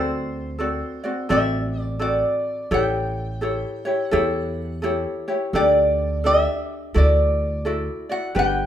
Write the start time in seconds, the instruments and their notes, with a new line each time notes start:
Already playing: upright bass D2, ukulele C4 F#4 A4 D5, resonator guitar played with a steel bar C5
0.59 ukulele C4 F#4 A4 D5
1.04 ukulele C4 F#4 D5
1.29 upright bass A1, ukulele C4 F#4 A4 D5, resonator guitar played with a steel bar E5
1.81 resonator guitar played with a steel bar D5
1.99 ukulele C4 F#4 A4 D5, resonator guitar played with a steel bar D5
2.71 upright bass A1, ukulele E4 G4 A4 C#5, resonator guitar played with a steel bar G5
3.41 ukulele E4 G4 A4 C#5
3.85 ukulele E4 G4 C#5
4.05 resonator guitar played with a steel bar F#5
4.11 upright bass E2, ukulele E4 G4 A4 C#5
4.82 ukulele E4 G4 A4 C#5
5.28 ukulele E4 G4 C#5
5.53 upright bass D2, ukulele D4 G4 A4 D5, resonator guitar played with a steel bar D5
6.24 ukulele D4 G4 A4 D5, resonator guitar played with a steel bar E5
6.94 upright bass D2, ukulele E4 F#4 A4 D5, resonator guitar played with a steel bar D5
7.65 ukulele E4 F#4 A4 D5
8.09 ukulele E4 F#4 D5, resonator guitar played with a steel bar F#5
8.35 upright bass G1, ukulele D4 G4 B4
8.39 resonator guitar played with a steel bar G5